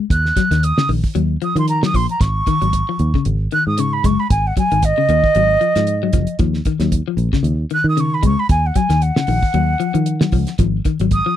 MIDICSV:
0, 0, Header, 1, 6, 480
1, 0, Start_track
1, 0, Tempo, 524476
1, 96, Time_signature, 4, 2, 24, 8
1, 10402, End_track
2, 0, Start_track
2, 0, Title_t, "Flute"
2, 0, Program_c, 0, 73
2, 108, Note_on_c, 0, 90, 85
2, 585, Note_on_c, 0, 87, 100
2, 599, Note_off_c, 0, 90, 0
2, 816, Note_off_c, 0, 87, 0
2, 1316, Note_on_c, 0, 87, 81
2, 1434, Note_off_c, 0, 87, 0
2, 1453, Note_on_c, 0, 84, 78
2, 1544, Note_off_c, 0, 84, 0
2, 1550, Note_on_c, 0, 82, 84
2, 1671, Note_off_c, 0, 82, 0
2, 1696, Note_on_c, 0, 87, 86
2, 1793, Note_on_c, 0, 84, 95
2, 1807, Note_off_c, 0, 87, 0
2, 1913, Note_off_c, 0, 84, 0
2, 1925, Note_on_c, 0, 82, 83
2, 2024, Note_on_c, 0, 85, 99
2, 2038, Note_off_c, 0, 82, 0
2, 2956, Note_off_c, 0, 85, 0
2, 3233, Note_on_c, 0, 90, 94
2, 3354, Note_off_c, 0, 90, 0
2, 3361, Note_on_c, 0, 87, 92
2, 3475, Note_on_c, 0, 85, 90
2, 3489, Note_off_c, 0, 87, 0
2, 3597, Note_on_c, 0, 83, 86
2, 3611, Note_off_c, 0, 85, 0
2, 3713, Note_on_c, 0, 85, 85
2, 3727, Note_off_c, 0, 83, 0
2, 3840, Note_on_c, 0, 83, 89
2, 3854, Note_off_c, 0, 85, 0
2, 3937, Note_off_c, 0, 83, 0
2, 3943, Note_on_c, 0, 80, 87
2, 4091, Note_on_c, 0, 78, 84
2, 4105, Note_off_c, 0, 80, 0
2, 4183, Note_off_c, 0, 78, 0
2, 4198, Note_on_c, 0, 80, 100
2, 4436, Note_on_c, 0, 75, 120
2, 4449, Note_off_c, 0, 80, 0
2, 5830, Note_off_c, 0, 75, 0
2, 7082, Note_on_c, 0, 90, 84
2, 7196, Note_off_c, 0, 90, 0
2, 7221, Note_on_c, 0, 87, 78
2, 7322, Note_on_c, 0, 85, 77
2, 7336, Note_off_c, 0, 87, 0
2, 7451, Note_on_c, 0, 83, 86
2, 7464, Note_off_c, 0, 85, 0
2, 7540, Note_off_c, 0, 83, 0
2, 7559, Note_on_c, 0, 85, 92
2, 7682, Note_on_c, 0, 83, 103
2, 7696, Note_off_c, 0, 85, 0
2, 7775, Note_off_c, 0, 83, 0
2, 7784, Note_on_c, 0, 80, 92
2, 7929, Note_on_c, 0, 78, 84
2, 7943, Note_off_c, 0, 80, 0
2, 8017, Note_on_c, 0, 80, 82
2, 8031, Note_off_c, 0, 78, 0
2, 8258, Note_on_c, 0, 78, 102
2, 8272, Note_off_c, 0, 80, 0
2, 9658, Note_off_c, 0, 78, 0
2, 10189, Note_on_c, 0, 87, 93
2, 10402, Note_off_c, 0, 87, 0
2, 10402, End_track
3, 0, Start_track
3, 0, Title_t, "Clean electric guitar"
3, 0, Program_c, 1, 27
3, 338, Note_on_c, 1, 54, 90
3, 441, Note_off_c, 1, 54, 0
3, 471, Note_on_c, 1, 51, 69
3, 655, Note_off_c, 1, 51, 0
3, 714, Note_on_c, 1, 49, 63
3, 795, Note_off_c, 1, 49, 0
3, 817, Note_on_c, 1, 51, 72
3, 1002, Note_off_c, 1, 51, 0
3, 1053, Note_on_c, 1, 54, 83
3, 1240, Note_off_c, 1, 54, 0
3, 1297, Note_on_c, 1, 53, 76
3, 1402, Note_off_c, 1, 53, 0
3, 1433, Note_on_c, 1, 53, 72
3, 1618, Note_off_c, 1, 53, 0
3, 1675, Note_on_c, 1, 54, 65
3, 1757, Note_off_c, 1, 54, 0
3, 1781, Note_on_c, 1, 53, 72
3, 1965, Note_off_c, 1, 53, 0
3, 2265, Note_on_c, 1, 51, 83
3, 2367, Note_off_c, 1, 51, 0
3, 2394, Note_on_c, 1, 54, 65
3, 2579, Note_off_c, 1, 54, 0
3, 2644, Note_on_c, 1, 53, 65
3, 2825, Note_off_c, 1, 53, 0
3, 2885, Note_on_c, 1, 49, 77
3, 3066, Note_off_c, 1, 49, 0
3, 3225, Note_on_c, 1, 51, 71
3, 3408, Note_off_c, 1, 51, 0
3, 3467, Note_on_c, 1, 49, 71
3, 3649, Note_off_c, 1, 49, 0
3, 3704, Note_on_c, 1, 56, 76
3, 3888, Note_off_c, 1, 56, 0
3, 4185, Note_on_c, 1, 54, 76
3, 4287, Note_off_c, 1, 54, 0
3, 4318, Note_on_c, 1, 51, 75
3, 4501, Note_off_c, 1, 51, 0
3, 4556, Note_on_c, 1, 49, 74
3, 4637, Note_off_c, 1, 49, 0
3, 4666, Note_on_c, 1, 51, 82
3, 4848, Note_off_c, 1, 51, 0
3, 4907, Note_on_c, 1, 54, 78
3, 5089, Note_off_c, 1, 54, 0
3, 5133, Note_on_c, 1, 53, 72
3, 5239, Note_off_c, 1, 53, 0
3, 5273, Note_on_c, 1, 53, 76
3, 5458, Note_off_c, 1, 53, 0
3, 5518, Note_on_c, 1, 54, 78
3, 5598, Note_off_c, 1, 54, 0
3, 5617, Note_on_c, 1, 53, 75
3, 5802, Note_off_c, 1, 53, 0
3, 5857, Note_on_c, 1, 53, 84
3, 6042, Note_off_c, 1, 53, 0
3, 6101, Note_on_c, 1, 51, 83
3, 6203, Note_off_c, 1, 51, 0
3, 6233, Note_on_c, 1, 54, 82
3, 6417, Note_off_c, 1, 54, 0
3, 6476, Note_on_c, 1, 53, 68
3, 6658, Note_off_c, 1, 53, 0
3, 6710, Note_on_c, 1, 49, 79
3, 6894, Note_off_c, 1, 49, 0
3, 7055, Note_on_c, 1, 51, 68
3, 7239, Note_off_c, 1, 51, 0
3, 7294, Note_on_c, 1, 49, 70
3, 7478, Note_off_c, 1, 49, 0
3, 7529, Note_on_c, 1, 56, 74
3, 7715, Note_off_c, 1, 56, 0
3, 8014, Note_on_c, 1, 54, 83
3, 8118, Note_off_c, 1, 54, 0
3, 8145, Note_on_c, 1, 51, 66
3, 8330, Note_off_c, 1, 51, 0
3, 8387, Note_on_c, 1, 49, 65
3, 8469, Note_off_c, 1, 49, 0
3, 8496, Note_on_c, 1, 51, 76
3, 8679, Note_off_c, 1, 51, 0
3, 8734, Note_on_c, 1, 54, 76
3, 8918, Note_off_c, 1, 54, 0
3, 8967, Note_on_c, 1, 53, 75
3, 9072, Note_off_c, 1, 53, 0
3, 9097, Note_on_c, 1, 53, 78
3, 9285, Note_off_c, 1, 53, 0
3, 9343, Note_on_c, 1, 54, 76
3, 9426, Note_off_c, 1, 54, 0
3, 9454, Note_on_c, 1, 53, 78
3, 9637, Note_off_c, 1, 53, 0
3, 9696, Note_on_c, 1, 53, 83
3, 9878, Note_off_c, 1, 53, 0
3, 9937, Note_on_c, 1, 51, 79
3, 10038, Note_off_c, 1, 51, 0
3, 10078, Note_on_c, 1, 54, 75
3, 10257, Note_off_c, 1, 54, 0
3, 10306, Note_on_c, 1, 53, 69
3, 10402, Note_off_c, 1, 53, 0
3, 10402, End_track
4, 0, Start_track
4, 0, Title_t, "Fingered electric bass"
4, 0, Program_c, 2, 33
4, 91, Note_on_c, 2, 39, 86
4, 281, Note_off_c, 2, 39, 0
4, 464, Note_on_c, 2, 39, 82
4, 655, Note_off_c, 2, 39, 0
4, 812, Note_on_c, 2, 34, 91
4, 920, Note_off_c, 2, 34, 0
4, 1054, Note_on_c, 2, 39, 86
4, 1244, Note_off_c, 2, 39, 0
4, 1422, Note_on_c, 2, 51, 82
4, 1774, Note_on_c, 2, 34, 82
4, 1788, Note_off_c, 2, 51, 0
4, 1882, Note_off_c, 2, 34, 0
4, 2017, Note_on_c, 2, 32, 90
4, 2207, Note_off_c, 2, 32, 0
4, 2395, Note_on_c, 2, 32, 82
4, 2583, Note_off_c, 2, 32, 0
4, 2741, Note_on_c, 2, 39, 98
4, 2847, Note_off_c, 2, 39, 0
4, 2982, Note_on_c, 2, 32, 96
4, 3169, Note_off_c, 2, 32, 0
4, 3356, Note_on_c, 2, 44, 75
4, 3696, Note_on_c, 2, 30, 74
4, 3709, Note_off_c, 2, 44, 0
4, 3803, Note_off_c, 2, 30, 0
4, 3938, Note_on_c, 2, 32, 90
4, 4127, Note_off_c, 2, 32, 0
4, 4317, Note_on_c, 2, 32, 79
4, 4504, Note_off_c, 2, 32, 0
4, 4656, Note_on_c, 2, 39, 94
4, 4763, Note_off_c, 2, 39, 0
4, 4901, Note_on_c, 2, 32, 98
4, 5088, Note_off_c, 2, 32, 0
4, 5269, Note_on_c, 2, 44, 84
4, 5613, Note_on_c, 2, 30, 84
4, 5627, Note_off_c, 2, 44, 0
4, 5720, Note_off_c, 2, 30, 0
4, 5848, Note_on_c, 2, 39, 93
4, 6039, Note_off_c, 2, 39, 0
4, 6218, Note_on_c, 2, 39, 89
4, 6411, Note_off_c, 2, 39, 0
4, 6561, Note_on_c, 2, 34, 88
4, 6672, Note_off_c, 2, 34, 0
4, 6798, Note_on_c, 2, 39, 97
4, 6992, Note_off_c, 2, 39, 0
4, 7177, Note_on_c, 2, 51, 89
4, 7533, Note_on_c, 2, 37, 85
4, 7547, Note_off_c, 2, 51, 0
4, 7639, Note_off_c, 2, 37, 0
4, 7773, Note_on_c, 2, 39, 94
4, 7961, Note_off_c, 2, 39, 0
4, 8139, Note_on_c, 2, 39, 79
4, 8330, Note_off_c, 2, 39, 0
4, 8491, Note_on_c, 2, 34, 96
4, 8597, Note_off_c, 2, 34, 0
4, 8729, Note_on_c, 2, 39, 99
4, 8918, Note_off_c, 2, 39, 0
4, 9101, Note_on_c, 2, 51, 76
4, 9447, Note_on_c, 2, 37, 78
4, 9461, Note_off_c, 2, 51, 0
4, 9554, Note_off_c, 2, 37, 0
4, 9690, Note_on_c, 2, 32, 100
4, 9877, Note_off_c, 2, 32, 0
4, 10065, Note_on_c, 2, 32, 85
4, 10252, Note_off_c, 2, 32, 0
4, 10402, End_track
5, 0, Start_track
5, 0, Title_t, "Muted clean electric guitar strokes"
5, 2022, Note_on_c, 9, 29, 86
5, 2113, Note_off_c, 9, 29, 0
5, 10402, End_track
6, 0, Start_track
6, 0, Title_t, "Drums"
6, 94, Note_on_c, 9, 36, 87
6, 101, Note_on_c, 9, 42, 72
6, 186, Note_off_c, 9, 36, 0
6, 192, Note_off_c, 9, 42, 0
6, 234, Note_on_c, 9, 38, 29
6, 326, Note_off_c, 9, 38, 0
6, 334, Note_on_c, 9, 36, 65
6, 335, Note_on_c, 9, 42, 54
6, 336, Note_on_c, 9, 38, 24
6, 425, Note_off_c, 9, 36, 0
6, 426, Note_off_c, 9, 42, 0
6, 428, Note_off_c, 9, 38, 0
6, 471, Note_on_c, 9, 42, 50
6, 473, Note_on_c, 9, 38, 26
6, 563, Note_off_c, 9, 42, 0
6, 565, Note_off_c, 9, 38, 0
6, 578, Note_on_c, 9, 42, 77
6, 670, Note_off_c, 9, 42, 0
6, 711, Note_on_c, 9, 38, 63
6, 802, Note_off_c, 9, 38, 0
6, 811, Note_on_c, 9, 46, 70
6, 903, Note_off_c, 9, 46, 0
6, 949, Note_on_c, 9, 36, 68
6, 1040, Note_off_c, 9, 36, 0
6, 1057, Note_on_c, 9, 42, 73
6, 1149, Note_off_c, 9, 42, 0
6, 1295, Note_on_c, 9, 42, 40
6, 1387, Note_off_c, 9, 42, 0
6, 1430, Note_on_c, 9, 42, 50
6, 1522, Note_off_c, 9, 42, 0
6, 1534, Note_on_c, 9, 42, 61
6, 1625, Note_off_c, 9, 42, 0
6, 1673, Note_on_c, 9, 38, 68
6, 1765, Note_off_c, 9, 38, 0
6, 1777, Note_on_c, 9, 36, 63
6, 1780, Note_on_c, 9, 46, 59
6, 1869, Note_off_c, 9, 36, 0
6, 1871, Note_off_c, 9, 46, 0
6, 1916, Note_on_c, 9, 42, 50
6, 2007, Note_off_c, 9, 42, 0
6, 2019, Note_on_c, 9, 36, 97
6, 2022, Note_on_c, 9, 42, 69
6, 2024, Note_on_c, 9, 38, 29
6, 2110, Note_off_c, 9, 36, 0
6, 2113, Note_off_c, 9, 42, 0
6, 2115, Note_off_c, 9, 38, 0
6, 2258, Note_on_c, 9, 36, 68
6, 2259, Note_on_c, 9, 42, 49
6, 2350, Note_off_c, 9, 36, 0
6, 2350, Note_off_c, 9, 42, 0
6, 2396, Note_on_c, 9, 42, 53
6, 2488, Note_off_c, 9, 42, 0
6, 2498, Note_on_c, 9, 36, 60
6, 2498, Note_on_c, 9, 42, 71
6, 2589, Note_off_c, 9, 36, 0
6, 2590, Note_off_c, 9, 42, 0
6, 2738, Note_on_c, 9, 42, 51
6, 2829, Note_off_c, 9, 42, 0
6, 2872, Note_on_c, 9, 36, 61
6, 2964, Note_off_c, 9, 36, 0
6, 2976, Note_on_c, 9, 42, 69
6, 3067, Note_off_c, 9, 42, 0
6, 3215, Note_on_c, 9, 42, 45
6, 3306, Note_off_c, 9, 42, 0
6, 3455, Note_on_c, 9, 42, 75
6, 3547, Note_off_c, 9, 42, 0
6, 3699, Note_on_c, 9, 36, 70
6, 3702, Note_on_c, 9, 42, 56
6, 3791, Note_off_c, 9, 36, 0
6, 3793, Note_off_c, 9, 42, 0
6, 3939, Note_on_c, 9, 42, 79
6, 3940, Note_on_c, 9, 36, 96
6, 4031, Note_off_c, 9, 36, 0
6, 4031, Note_off_c, 9, 42, 0
6, 4179, Note_on_c, 9, 36, 68
6, 4179, Note_on_c, 9, 42, 51
6, 4271, Note_off_c, 9, 36, 0
6, 4271, Note_off_c, 9, 42, 0
6, 4315, Note_on_c, 9, 42, 51
6, 4407, Note_off_c, 9, 42, 0
6, 4415, Note_on_c, 9, 42, 72
6, 4418, Note_on_c, 9, 36, 69
6, 4507, Note_off_c, 9, 42, 0
6, 4510, Note_off_c, 9, 36, 0
6, 4655, Note_on_c, 9, 42, 50
6, 4746, Note_off_c, 9, 42, 0
6, 4792, Note_on_c, 9, 36, 67
6, 4884, Note_off_c, 9, 36, 0
6, 4894, Note_on_c, 9, 42, 75
6, 4985, Note_off_c, 9, 42, 0
6, 5135, Note_on_c, 9, 42, 45
6, 5227, Note_off_c, 9, 42, 0
6, 5268, Note_on_c, 9, 42, 48
6, 5270, Note_on_c, 9, 38, 26
6, 5359, Note_off_c, 9, 42, 0
6, 5361, Note_off_c, 9, 38, 0
6, 5371, Note_on_c, 9, 42, 63
6, 5462, Note_off_c, 9, 42, 0
6, 5606, Note_on_c, 9, 42, 57
6, 5613, Note_on_c, 9, 36, 68
6, 5698, Note_off_c, 9, 42, 0
6, 5704, Note_off_c, 9, 36, 0
6, 5737, Note_on_c, 9, 42, 53
6, 5829, Note_off_c, 9, 42, 0
6, 5846, Note_on_c, 9, 42, 64
6, 5852, Note_on_c, 9, 36, 99
6, 5937, Note_off_c, 9, 42, 0
6, 5944, Note_off_c, 9, 36, 0
6, 5982, Note_on_c, 9, 38, 28
6, 6074, Note_off_c, 9, 38, 0
6, 6086, Note_on_c, 9, 42, 50
6, 6090, Note_on_c, 9, 36, 64
6, 6177, Note_off_c, 9, 42, 0
6, 6182, Note_off_c, 9, 36, 0
6, 6221, Note_on_c, 9, 42, 47
6, 6223, Note_on_c, 9, 38, 30
6, 6313, Note_off_c, 9, 42, 0
6, 6315, Note_off_c, 9, 38, 0
6, 6332, Note_on_c, 9, 42, 71
6, 6333, Note_on_c, 9, 36, 63
6, 6424, Note_off_c, 9, 36, 0
6, 6424, Note_off_c, 9, 42, 0
6, 6570, Note_on_c, 9, 42, 49
6, 6662, Note_off_c, 9, 42, 0
6, 6707, Note_on_c, 9, 36, 65
6, 6709, Note_on_c, 9, 38, 32
6, 6799, Note_off_c, 9, 36, 0
6, 6800, Note_off_c, 9, 38, 0
6, 6812, Note_on_c, 9, 42, 64
6, 6903, Note_off_c, 9, 42, 0
6, 7050, Note_on_c, 9, 42, 43
6, 7141, Note_off_c, 9, 42, 0
6, 7297, Note_on_c, 9, 42, 61
6, 7388, Note_off_c, 9, 42, 0
6, 7532, Note_on_c, 9, 42, 58
6, 7533, Note_on_c, 9, 36, 67
6, 7623, Note_off_c, 9, 42, 0
6, 7624, Note_off_c, 9, 36, 0
6, 7772, Note_on_c, 9, 42, 72
6, 7774, Note_on_c, 9, 36, 91
6, 7864, Note_off_c, 9, 42, 0
6, 7865, Note_off_c, 9, 36, 0
6, 8012, Note_on_c, 9, 42, 54
6, 8014, Note_on_c, 9, 36, 73
6, 8103, Note_off_c, 9, 42, 0
6, 8105, Note_off_c, 9, 36, 0
6, 8144, Note_on_c, 9, 42, 58
6, 8146, Note_on_c, 9, 38, 28
6, 8236, Note_off_c, 9, 42, 0
6, 8237, Note_off_c, 9, 38, 0
6, 8252, Note_on_c, 9, 42, 78
6, 8344, Note_off_c, 9, 42, 0
6, 8387, Note_on_c, 9, 38, 62
6, 8478, Note_off_c, 9, 38, 0
6, 8484, Note_on_c, 9, 46, 61
6, 8576, Note_off_c, 9, 46, 0
6, 8626, Note_on_c, 9, 36, 66
6, 8717, Note_off_c, 9, 36, 0
6, 8730, Note_on_c, 9, 42, 79
6, 8821, Note_off_c, 9, 42, 0
6, 8971, Note_on_c, 9, 42, 51
6, 9063, Note_off_c, 9, 42, 0
6, 9104, Note_on_c, 9, 42, 55
6, 9195, Note_off_c, 9, 42, 0
6, 9207, Note_on_c, 9, 42, 67
6, 9299, Note_off_c, 9, 42, 0
6, 9342, Note_on_c, 9, 38, 68
6, 9434, Note_off_c, 9, 38, 0
6, 9442, Note_on_c, 9, 46, 60
6, 9449, Note_on_c, 9, 36, 67
6, 9534, Note_off_c, 9, 46, 0
6, 9541, Note_off_c, 9, 36, 0
6, 9580, Note_on_c, 9, 42, 55
6, 9581, Note_on_c, 9, 38, 29
6, 9671, Note_off_c, 9, 42, 0
6, 9673, Note_off_c, 9, 38, 0
6, 9687, Note_on_c, 9, 42, 68
6, 9691, Note_on_c, 9, 36, 91
6, 9778, Note_off_c, 9, 42, 0
6, 9783, Note_off_c, 9, 36, 0
6, 9929, Note_on_c, 9, 42, 44
6, 9932, Note_on_c, 9, 36, 70
6, 10021, Note_off_c, 9, 42, 0
6, 10023, Note_off_c, 9, 36, 0
6, 10063, Note_on_c, 9, 42, 51
6, 10154, Note_off_c, 9, 42, 0
6, 10167, Note_on_c, 9, 42, 64
6, 10172, Note_on_c, 9, 36, 66
6, 10259, Note_off_c, 9, 42, 0
6, 10263, Note_off_c, 9, 36, 0
6, 10402, End_track
0, 0, End_of_file